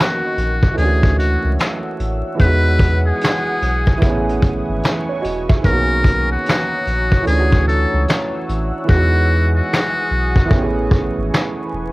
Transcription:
0.00 0.71 D#3 medium
0.00 0.73 A#3 medium
0.00 0.74 B3 medium
0.00 0.75 C#4 medium
0.00 0.77 F#4 medium
0.00 0.80 F#4 medium
0.00 0.76 A#4 medium
0.00 0.76 D#5 medium
0.00 0.76 C#6 loud
0.00 finger snap medium
0.00 snare loud
0.37 0.73 A#1 medium
0.37 closed hi-hat medium
0.63 kick medium
0.73 2.33 E3 medium
0.73 2.35 A3 medium
0.73 2.38 C#5 medium
0.73 2.38 F#5 medium
0.73 2.38 E6 medium
0.77 1.37 D2 loud
0.77 2.37 C#4 medium
0.77 1.14 G#4 medium
0.77 closed hi-hat medium
0.81 2.38 D4 medium
0.81 2.40 F#4 medium
1.03 kick medium
1.03 closed hi-hat soft
1.18 1.55 F#4 medium
1.18 closed hi-hat medium
1.44 1.57 C#2 loud
1.59 finger snap medium
1.59 snare loud
1.59 closed hi-hat medium
1.99 2.22 A1 loud
1.99 closed hi-hat medium
2.35 3.96 E3 medium
2.35 3.98 G#3 medium
2.39 3.12 E2 loud
2.39 3.99 B3 medium
2.39 4.00 G#4 medium
2.39 3.02 B4 loud
2.39 4.00 F#5 medium
2.39 4.00 D#6 medium
2.39 kick medium
2.39 closed hi-hat medium
2.43 4.00 D#4 medium
2.43 4.02 F#4 medium
2.80 kick loud
2.80 closed hi-hat medium
3.07 4.24 G#4 medium
3.21 finger snap loud
3.21 snare loud
3.21 closed hi-hat medium
3.62 3.98 B1 medium
3.62 closed hi-hat medium
3.87 kick medium
3.98 5.59 E3 medium
3.98 5.60 A3 medium
3.98 5.62 B4 medium
3.98 5.62 G#5 medium
3.98 5.62 C#6 medium
4.02 4.61 A1 loud
4.02 5.62 B3 medium
4.02 kick loud
4.02 closed hi-hat medium
4.06 5.63 C#4 medium
4.06 4.85 G#4 medium
4.29 closed hi-hat soft
4.42 kick medium
4.42 closed hi-hat medium
4.69 4.82 G#1 loud
4.83 finger snap medium
4.83 snare loud
4.83 closed hi-hat medium
5.09 5.23 E4 medium
5.09 5.23 C#5 medium
5.21 5.47 E1 medium
5.21 5.47 F#4 medium
5.21 5.47 D#5 medium
5.21 closed hi-hat medium
5.49 5.88 G#4 medium
5.49 5.88 E5 medium
5.49 kick loud
5.61 6.37 B1 loud
5.61 7.22 D#3 medium
5.61 7.23 A#3 medium
5.61 6.27 A#4 loud
5.61 8.85 C#5 medium
5.61 7.24 A#5 medium
5.61 7.24 D#6 medium
5.61 kick medium
5.61 closed hi-hat medium
5.67 7.24 B3 medium
5.67 7.26 C#4 medium
5.72 7.27 F#4 medium
6.04 kick medium
6.04 closed hi-hat medium
6.32 7.23 F#4 medium
6.46 finger snap medium
6.46 snare loud
6.46 closed hi-hat medium
6.86 7.22 A#1 medium
6.86 closed hi-hat medium
7.12 kick medium
7.22 8.83 E3 medium
7.22 8.84 A3 medium
7.26 7.86 D2 loud
7.26 8.86 C#4 medium
7.26 8.87 D4 medium
7.26 7.63 G#4 medium
7.26 10.47 F#5 medium
7.26 8.87 E6 medium
7.26 closed hi-hat medium
7.33 7.38 F4 soft
7.40 8.92 F#4 medium
7.52 kick medium
7.68 8.04 A4 medium
7.68 closed hi-hat medium
7.93 8.06 C#2 loud
8.08 finger snap loud
8.08 snare loud
8.08 closed hi-hat medium
8.49 8.71 A1 loud
8.49 closed hi-hat medium
8.84 10.44 E3 medium
8.84 10.47 G#3 medium
8.88 9.61 E2 loud
8.88 10.48 B3 medium
8.88 9.51 F#4 loud
8.88 10.49 G#4 medium
8.88 10.49 D#6 medium
8.88 kick loud
8.93 10.50 D#4 medium
8.93 10.51 F#4 medium
9.56 10.73 F#4 medium
9.73 finger snap medium
9.73 snare loud
10.11 10.47 B1 medium
10.36 kick medium
10.46 11.92 E3 medium
10.46 11.92 A3 medium
10.50 11.10 A1 loud
10.50 11.92 B3 medium
10.50 11.92 C#4 medium
10.50 11.92 B4 medium
10.50 11.92 G#5 medium
10.50 11.92 C#6 loud
10.50 kick medium
10.57 10.62 G4 medium
10.63 11.92 G#4 medium
10.91 kick loud
11.18 11.30 G#1 loud
11.34 finger snap medium
11.34 snare loud
11.73 11.92 E1 medium

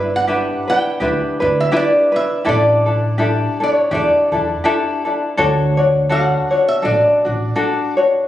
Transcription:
0.00 0.49 G1 medium
0.00 0.27 D4 soft
0.00 0.27 E4 soft
0.00 0.26 B4 soft
0.00 0.14 E5 medium
0.16 0.69 F#5 medium
0.27 0.68 D4 medium
0.27 0.68 E4 medium
0.27 0.68 G4 medium
0.27 0.66 B4 medium
0.68 1.00 D4 soft
0.68 1.00 E4 soft
0.68 0.99 B4 soft
0.68 1.60 G5 loud
1.00 1.14 D2 medium
1.00 1.41 D4 medium
1.00 1.40 E4 medium
1.00 1.41 G4 medium
1.00 1.39 B4 medium
1.40 1.62 D2 medium
1.40 1.71 D4 soft
1.40 1.71 E4 soft
1.40 1.72 B4 soft
1.60 1.75 E5 medium
1.72 2.13 D4 medium
1.72 2.12 E4 medium
1.72 2.13 G4 medium
1.72 2.11 B4 medium
1.76 2.13 D5 medium
2.12 2.44 D4 soft
2.12 2.44 E4 soft
2.12 2.45 B4 soft
2.16 2.48 E5 medium
2.45 3.41 A1 medium
2.45 2.87 D4 medium
2.45 2.86 E4 medium
2.45 2.86 G4 medium
2.45 2.85 A4 medium
2.49 3.63 D5 medium
2.86 3.17 D4 soft
2.86 3.18 E4 soft
2.86 3.18 A4 soft
3.18 3.60 D4 medium
3.18 3.59 E4 medium
3.18 3.59 G4 medium
3.18 3.59 A4 medium
3.60 3.90 D4 soft
3.60 3.91 E4 soft
3.60 3.91 A4 soft
3.60 3.91 C#5 medium
3.91 4.05 E2 medium
3.91 4.33 D4 medium
3.91 4.32 E4 medium
3.91 4.32 G4 medium
3.91 4.31 A4 medium
3.91 5.03 D5 medium
4.32 4.53 E2 medium
4.32 4.63 D4 soft
4.32 4.64 E4 soft
4.32 4.64 A4 soft
4.64 5.06 D4 medium
4.64 5.04 E4 medium
4.64 5.05 G4 medium
4.64 5.04 A4 medium
5.05 5.37 D4 soft
5.05 5.38 E4 soft
5.05 5.36 A4 soft
5.37 6.33 D2 medium
5.37 5.78 D4 medium
5.37 5.77 F#4 medium
5.37 5.79 A4 medium
5.37 5.76 C#5 medium
5.77 6.09 D4 soft
5.77 6.09 F#4 soft
5.77 6.10 C#5 soft
6.09 6.52 D4 medium
6.09 6.51 F#4 medium
6.09 6.51 A4 medium
6.09 6.49 C#5 medium
6.09 6.58 F#5 medium
6.51 6.82 D4 soft
6.51 6.82 F#4 soft
6.51 6.82 C#5 soft
6.58 6.68 E5 medium
6.68 6.85 E5 medium
6.82 6.98 A1 medium
6.82 7.24 D4 medium
6.82 7.24 F#4 medium
6.82 7.24 A4 medium
6.82 7.94 D5 medium
7.25 7.47 A1 medium
7.25 7.55 D4 soft
7.25 7.55 F#4 soft
7.56 7.98 D4 medium
7.56 7.97 F#4 medium
7.56 7.96 A4 medium
7.97 8.28 D4 soft
7.97 8.28 F#4 medium
7.97 8.28 C#5 soft

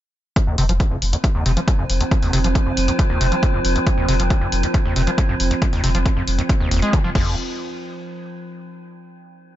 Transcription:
0.36 0.40 F2 medium
0.36 7.41 F3 medium
0.36 7.41 C4 medium
0.36 kick loud
0.36 closed hi-hat medium
0.47 0.58 F1 medium
0.47 0.56 D#2 medium
0.58 0.69 F1 medium
0.58 0.64 C3 loud
0.58 open hi-hat loud
0.69 0.80 F1 medium
0.69 0.73 F3 medium
0.69 closed hi-hat medium
0.80 0.84 F2 medium
0.80 kick loud
0.80 closed hi-hat medium
0.91 1.01 F1 medium
0.91 0.97 F2 medium
1.02 1.13 F1 loud
1.02 open hi-hat loud
1.13 1.17 D#2 medium
1.13 closed hi-hat medium
1.24 1.27 F2 medium
1.24 kick loud
1.24 closed hi-hat medium
1.35 1.45 F1 medium
1.35 1.44 D#2 loud
1.46 1.57 F1 loud
1.46 1.52 C3 loud
1.46 open hi-hat loud
1.57 1.60 F3 medium
1.57 closed hi-hat medium
1.68 1.71 F2 medium
1.68 kick loud
1.68 closed hi-hat medium
1.79 1.89 F1 medium
1.79 1.85 F2 medium
1.90 2.00 F1 loud
1.90 open hi-hat loud
2.01 2.04 D#2 medium
2.01 closed hi-hat medium
2.11 2.15 F2 medium
2.11 kick loud
2.11 closed hi-hat medium
2.22 2.33 F1 medium
2.22 2.31 D#2 loud
2.22 open hi-hat medium
2.33 2.44 F1 medium
2.33 2.39 C3 loud
2.33 open hi-hat loud
2.44 2.55 F1 medium
2.44 2.48 F3 medium
2.44 closed hi-hat medium
2.55 2.59 F2 medium
2.55 kick loud
2.55 closed hi-hat medium
2.66 2.77 F1 medium
2.66 2.72 F2 medium
2.77 2.88 F1 loud
2.77 open hi-hat loud
2.88 2.92 D#2 medium
2.88 closed hi-hat medium
2.99 3.03 F2 medium
2.99 kick loud
2.99 closed hi-hat medium
3.10 3.20 F1 medium
3.10 3.19 D#2 medium
3.21 3.32 F1 loud
3.21 3.27 C3 loud
3.21 open hi-hat loud
3.32 3.36 F3 medium
3.32 closed hi-hat medium
3.43 3.46 F2 medium
3.43 kick loud
3.43 closed hi-hat medium
3.54 3.64 F1 medium
3.54 3.60 F2 medium
3.65 3.76 F1 loud
3.65 open hi-hat loud
3.76 3.79 D#2 medium
3.76 closed hi-hat medium
3.87 3.90 F2 medium
3.87 kick loud
3.87 closed hi-hat medium
3.98 4.08 F1 medium
3.98 4.07 D#2 loud
4.08 4.19 F1 loud
4.08 4.15 C3 loud
4.08 open hi-hat loud
4.20 4.30 F1 medium
4.20 4.23 F3 medium
4.20 closed hi-hat medium
4.30 4.34 F2 medium
4.30 kick loud
4.30 closed hi-hat medium
4.41 4.52 F1 medium
4.41 4.47 F2 medium
4.52 4.63 F1 loud
4.52 open hi-hat loud
4.63 4.67 D#2 medium
4.63 closed hi-hat medium
4.74 4.78 F2 medium
4.74 kick loud
4.74 closed hi-hat medium
4.85 4.96 F1 medium
4.85 4.94 D#2 medium
4.96 5.07 F1 loud
4.96 5.02 C3 medium
4.96 open hi-hat loud
5.07 5.11 F3 medium
5.07 closed hi-hat medium
5.18 5.22 F2 medium
5.18 kick loud
5.18 closed hi-hat medium
5.29 5.39 F1 medium
5.29 5.35 F2 medium
5.40 5.51 F1 loud
5.40 open hi-hat loud
5.51 5.55 D#2 medium
5.51 closed hi-hat medium
5.62 5.65 F2 medium
5.62 kick loud
5.62 closed hi-hat medium
5.73 5.83 F1 medium
5.73 5.82 D#2 loud
5.73 open hi-hat medium
5.84 5.94 F1 loud
5.84 5.90 C3 loud
5.84 open hi-hat loud
5.95 6.05 F1 medium
5.95 5.98 F3 medium
5.95 closed hi-hat medium
6.06 6.09 F2 medium
6.06 kick loud
6.06 closed hi-hat medium
6.17 6.27 F1 medium
6.17 6.23 F2 medium
6.28 6.38 F1 loud
6.28 open hi-hat loud
6.38 6.42 D#2 medium
6.38 closed hi-hat medium
6.49 6.53 F2 medium
6.49 kick loud
6.49 closed hi-hat medium
6.60 6.71 F1 medium
6.60 6.69 D#2 loud
6.71 6.82 F1 loud
6.71 6.80 D#2 loud
6.71 open hi-hat loud
6.82 6.95 G#3 medium
6.82 closed hi-hat medium
6.93 6.99 C3 loud
6.93 kick loud
6.93 closed hi-hat medium
7.04 7.15 F1 medium
7.04 7.10 F3 medium
7.15 7.36 F1 loud
7.15 7.36 F2 loud
7.15 kick loud
7.15 crash medium

